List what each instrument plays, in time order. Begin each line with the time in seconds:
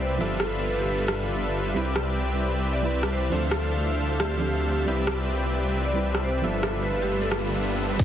Already playing: detuned saw bass C2, ambient pad C3 G3 E4 B4, synth pluck G3 C4 E4 B4, supersaw synth C4 G4 B4 D5 E5
0.01 marimba C5
0.18 detuned saw bass G1, synth pluck F3 B3 E5, ambient pad F3, supersaw synth G3 D4 F4 A4 B4 E5
0.22 synth pluck A4
0.40 marimba A4, cross-stick
0.59 marimba B4
0.69 marimba B4
0.79 marimba G4
0.89 marimba B4
0.98 marimba A4
1.08 cross-stick
1.74 detuned saw bass C2, ambient pad C3 G3 E4, synth pluck G3 C4 E4, supersaw synth C4 G4 B4 D5 E5
1.78 synth pluck B4
1.96 cross-stick
2.73 marimba D5
2.82 synth pluck G3 C4 E4
2.86 synth pluck B4
3.03 cross-stick
3.12 marimba C5
3.30 detuned saw bass D2, ambient pad D3 A3 C4 F4, synth pluck F3 C4 D4, supersaw synth D4 A4 C5 E5 F5
3.34 synth pluck A4
3.51 marimba A4, cross-stick
4.20 marimba G4, cross-stick
4.37 synth pluck F3 C4 D4, marimba G4
4.41 synth pluck A4
4.68 marimba G4
4.86 detuned saw bass C2, ambient pad C3 G3 E4 B4, synth pluck G3 C4 E4, supersaw synth C4 G4 B4 D5 E5, riser
4.90 synth pluck B4
5.07 cross-stick
5.85 marimba D5
5.93 synth pluck G3 C4 E4
5.97 synth pluck B4
6.15 cross-stick
6.24 marimba C5
6.41 detuned saw bass G1, synth pluck F3 B3 E5, ambient pad F3 B3, supersaw synth G3 D4 F4 A4 B4 E5
6.45 synth pluck A4
6.63 marimba A4, cross-stick
6.83 marimba B4
6.93 marimba B4
7.02 marimba G4
7.12 marimba B4
7.22 marimba A4
7.32 cross-stick
7.97 detuned saw bass C2, synth pluck G3 C4 E4 B4, supersaw synth C4 G4 B4 D5 E5, kick, snare, closed hi-hat